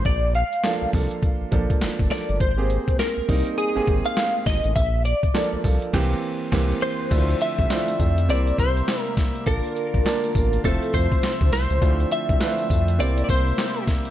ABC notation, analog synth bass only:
X:1
M:4/4
L:1/16
Q:"Swing 16ths" 1/4=102
K:Bblyd
V:1 name="Analog synth bass" clef=bass
B,,,3 z2 C,, C,, z2 B,,, B,,, z G,,, G,,, z G,,, | _A,,,3 z2 C,, C,, z2 A,,, A,,, z3 A,,, =A,,, | B,,,3 z2 C,, C,, z C,,2 z2 C,,2 z2 | D,,2 z C,, z2 F,,2 C,,2 C,,2 z4 |
B,,, z2 B,,, z2 A,,,2 F,,, z F,, z2 D,, C,, _D,, | D,,2 z C,, z2 F,,2 C,,2 C,,2 z4 |]